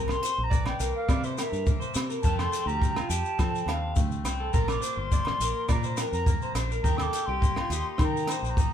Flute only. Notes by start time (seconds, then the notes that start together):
0.09 C6
0.39 C6
0.43 A#5
0.67 G5
0.95 F5
1.25 E5
1.39 E5 G5
2.22 A5
2.38 C6
2.67 A#5
3.08 A5
4.53 A#5
4.69 D6
4.99 C6
5.70 A#5
6.13 A#5
6.83 A#5
6.97 E6
7.02 D6
7.26 C6
8.00 C6
8.05 A#5
8.46 A#5 C6